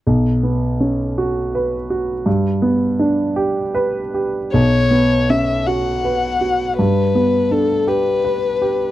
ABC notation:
X:1
M:6/8
L:1/8
Q:3/8=54
K:Bm
V:1 name="Violin"
z6 | z6 | c2 e f3 | B2 A B3 |]
V:2 name="Grand piano"
B,,, B, C F B F | G,, B, D G B G | B,,, B, C F B F | G,, B, D G B G |]